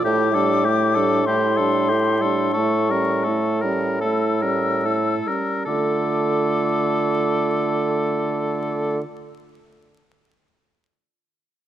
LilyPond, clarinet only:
\new Staff \with { instrumentName = "Clarinet" } { \time 4/4 \key d \minor \tempo 4 = 40 e'16 d'16 e'16 d'16 e'16 d'16 e'16 d'16 e'16 cis'16 e'16 cis'16 e'16 cis'16 e'16 cis'16 | f'1 | }